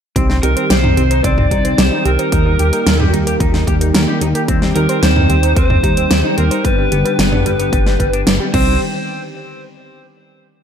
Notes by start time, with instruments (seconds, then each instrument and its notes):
0.16 analog synth bass C2, analog synth pad D#3 G3 C4 G4, analog polysynth G3 C4 D#4 G4 C5, synth arpeggio sound C4, clean electric guitar C4, kick, closed hi-hat
0.29 clean electric guitar C4, synth arpeggio sound D#4, snare
0.43 analog synth bass C2, clean electric guitar D#4, synth arpeggio sound G4, lead electric guitar A#4, closed hi-hat
0.56 clean electric guitar C4, synth arpeggio sound C5, closed hi-hat
0.70 analog synth bass C2, synth arpeggio sound C4, clean electric guitar G4, lead electric guitar C5, snare, closed hi-hat
0.83 clean electric guitar D#4, synth arpeggio sound D#4, mid tom
0.97 analog synth bass C2, analog polysynth G3 C4 D#4 G4 C5, clean electric guitar C4, synth arpeggio sound G4, closed hi-hat
1.10 clean electric guitar D#4, synth arpeggio sound C5, closed hi-hat
1.24 analog synth bass C2, synth arpeggio sound C4, clean electric guitar C4, lead electric guitar D5, kick, closed hi-hat
1.38 clean electric guitar C4, synth arpeggio sound D#4, mid tom
1.51 analog synth bass C2, analog polysynth G3 C4 D#4 G4 C5, clean electric guitar D#4, synth arpeggio sound G4, kick, closed hi-hat
1.65 clean electric guitar C4, synth arpeggio sound C5, closed hi-hat
1.78 analog synth bass C2, synth arpeggio sound C4, clean electric guitar G4, lead electric guitar C5, snare, closed hi-hat
1.92 synth arpeggio sound D#4, clean electric guitar D#4
2.05 analog synth bass C2, clean electric guitar C4, synth arpeggio sound G4, lead electric guitar A#4, closed hi-hat
2.19 clean electric guitar D#4, synth arpeggio sound C5, closed hi-hat
2.32 analog synth bass D#2, analog polysynth G3 A#3 D#4 G4 A#4, analog synth pad A#3, synth arpeggio sound A#3, clean electric guitar D#4, kick, closed hi-hat
2.46 clean electric guitar D#4, synth arpeggio sound D#4
2.59 analog synth bass D#2, synth arpeggio sound G4, clean electric guitar G4, closed hi-hat
2.73 clean electric guitar D#4, synth arpeggio sound A#4, closed hi-hat
2.86 analog synth bass D#2, synth arpeggio sound A#3, clean electric guitar A#4, snare, closed hi-hat
3.00 synth arpeggio sound D#4, clean electric guitar G4, mid tom
3.13 analog synth bass D#2, analog polysynth G3 A#3 D#4 G4 A#4, clean electric guitar D#4, synth arpeggio sound G4, closed hi-hat
3.27 clean electric guitar G4, synth arpeggio sound A#4, closed hi-hat
3.40 analog synth bass D#2, synth arpeggio sound A#3, clean electric guitar D#4, kick, closed hi-hat
3.54 synth arpeggio sound D#4, clean electric guitar D#4, snare
3.67 analog synth bass D#2, analog polysynth G3 A#3 D#4 G4 A#4, synth arpeggio sound G4, clean electric guitar G4, kick, closed hi-hat
3.81 clean electric guitar D#4, synth arpeggio sound A#4, closed hi-hat
3.94 analog synth bass D#2, synth arpeggio sound A#3, clean electric guitar A#4, snare, closed hi-hat
4.08 synth arpeggio sound D#4, clean electric guitar G4
4.21 analog synth bass D#2, clean electric guitar D#4, synth arpeggio sound G4, closed hi-hat
4.35 clean electric guitar G4, synth arpeggio sound A#4, closed hi-hat
4.48 analog synth bass D#2, analog polysynth G3 C4 D#4 G4 C5, synth arpeggio sound C4, analog synth pad C4, clean electric guitar C4, kick, closed hi-hat
4.62 clean electric guitar C4, synth arpeggio sound D#4, snare
4.75 analog synth bass D#2, clean electric guitar D#4, synth arpeggio sound G4, lead electric guitar A#4, closed hi-hat
4.89 clean electric guitar C4, synth arpeggio sound C5, closed hi-hat
5.02 analog synth bass D#2, synth arpeggio sound C4, clean electric guitar G4, lead electric guitar C5, snare, closed hi-hat
5.16 synth arpeggio sound D#4, clean electric guitar D#4, mid tom
5.29 analog synth bass D#2, analog polysynth G3 C4 D#4 G4 C5, clean electric guitar C4, synth arpeggio sound G4, closed hi-hat
5.43 clean electric guitar D#4, synth arpeggio sound C5, closed hi-hat
5.56 analog synth bass D#2, synth arpeggio sound C4, clean electric guitar C4, lead electric guitar C5, kick, closed hi-hat
5.70 clean electric guitar C4, synth arpeggio sound D#4, mid tom
5.83 analog synth bass D#2, analog polysynth G3 C4 D#4 G4 C5, clean electric guitar D#4, synth arpeggio sound G4, kick, closed hi-hat
5.97 clean electric guitar C4, synth arpeggio sound C5, closed hi-hat
6.11 analog synth bass D#2, synth arpeggio sound C4, clean electric guitar G4, snare, closed hi-hat
6.24 synth arpeggio sound D#4, clean electric guitar D#4
6.38 analog synth bass D#2, clean electric guitar C4, synth arpeggio sound G4, lead electric guitar A#4, closed hi-hat
6.51 clean electric guitar D#4, synth arpeggio sound C5, closed hi-hat
6.64 analog synth bass G1, analog synth pad D3 B3 G4, analog polysynth G3 B3 D4 G4 B4, clean electric guitar G3, synth arpeggio sound B3, lead electric guitar B4, kick, closed hi-hat
6.78 clean electric guitar G3, synth arpeggio sound D4
6.92 analog synth bass G1, clean electric guitar B3, synth arpeggio sound G4, closed hi-hat
7.05 clean electric guitar G3, synth arpeggio sound B4, closed hi-hat
7.19 analog synth bass G1, synth arpeggio sound B3, clean electric guitar D4, snare, closed hi-hat
7.32 clean electric guitar B3, synth arpeggio sound D4, mid tom
7.46 analog synth bass G1, analog polysynth G3 B3 D4 G4 B4, clean electric guitar G3, synth arpeggio sound G4, closed hi-hat
7.59 clean electric guitar B3, synth arpeggio sound B4, closed hi-hat
7.73 analog synth bass G1, clean electric guitar G3, synth arpeggio sound B3, kick, closed hi-hat
7.86 clean electric guitar G3, synth arpeggio sound D4, snare
8.00 analog synth bass G1, clean electric guitar G3, synth arpeggio sound B4, kick, closed hi-hat
8.13 synth arpeggio sound B3, clean electric guitar D4, closed hi-hat
8.27 analog synth bass G1, clean electric guitar D4, synth arpeggio sound B4, snare, closed hi-hat
8.40 clean electric guitar G3, synth arpeggio sound G4
8.54 analog synth bass C2, analog synth pad D#3 G3 C4 G4, analog polysynth G3 C4 D#4 G4 C5, synth arpeggio sound C4, clean electric guitar C4, lead electric guitar C5, kick, crash